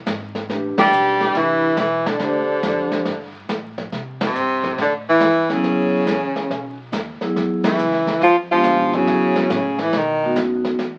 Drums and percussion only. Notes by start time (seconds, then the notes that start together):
0.06 kick, snare, hi-hat pedal
0.35 snare
0.49 brush sweep, kick, snare
0.77 snare, ride
0.92 hi-hat pedal
1.20 snare
1.35 brush sweep, kick, snare
1.77 kick, snare, hi-hat pedal
2.06 snare
2.19 brush sweep, kick, snare
2.62 kick, snare, hi-hat pedal
2.91 snare
3.05 brush sweep, kick, snare
3.49 kick, snare, hi-hat pedal
3.78 kick, snare
3.92 brush sweep, kick, snare
4.20 snare, ride
4.35 hi-hat pedal
4.63 kick, snare
4.78 brush sweep, kick, snare
5.20 kick, snare, hi-hat pedal
5.50 snare
5.64 brush sweep, kick, snare
6.06 kick, snare, hi-hat pedal
6.36 snare
6.50 brush sweep, kick, snare
6.92 kick, snare, hi-hat pedal
7.21 snare
7.36 brush sweep, kick, snare
7.63 snare, ride
7.78 hi-hat pedal
7.93 snare
8.07 snare
8.22 brush sweep, kick, snare
8.63 kick, snare, hi-hat pedal
8.93 snare
9.07 brush sweep, kick, snare
9.36 snare
9.50 kick, snare, hi-hat pedal
9.78 snare
9.93 brush sweep, kick, snare
10.35 kick, snare, hi-hat pedal
10.65 snare
10.79 brush sweep, kick, snare